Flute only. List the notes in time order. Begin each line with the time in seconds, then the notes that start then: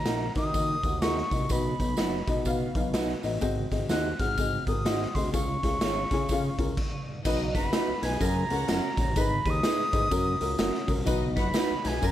Already playing: A#5
0.37 D#6
1.02 C#6
1.52 B5
3.91 F#6
4.20 F6
4.68 D#6
5.15 C6
5.34 C#6
7.56 B5
8.05 G#5
8.25 A#5
8.73 A#5
9.21 B5
9.50 D#6
11.39 B5
11.88 G#5
12.07 A#5